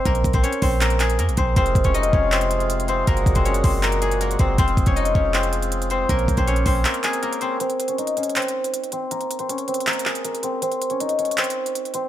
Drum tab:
HH |x--x--x--x--x--x--o-----x--x--x--x--x--x--x-----|x--x--x--x--x--x--------x--x--x--x--x--x--x-----|x--x--x--x--x--x--o-----x--x--x--x--x--x--x-----|x--x--x--x--x--x--------x--x--x--x--x--x--x-----|
CP |------------------------x-----x-----------------|------------------------x-----------------------|------------------------x-----------------------|------------------------x-----------------------|
BD |o-----o--o--------o-----------------------o-----|o-----o--o--------o-----------------------------|o-----o--o--------o-----------------------o-----|o-----o--o--------o-----------------------------|

HH |x--x--x--x--x--x--o-----x--x--x--x--x--x--x-----|x--x--x--x--x--x--x-x-x-x-x-x----x--x--x--x-----|x--x--x--x--x--x--x-x-x-x-x-x----x--x--x--x-----|x--x--x--x--x--x--x-x-x-x-x-x----x--x--x--x-----|
CP |------------------------x-----x-----------------|------------------------x-----------------------|------------------------x-----x-----------------|------------------------x-----------------------|
BD |o-----o--o--------o-----------------------------|------------------------------------------------|------------------------------------------------|------------------------------------------------|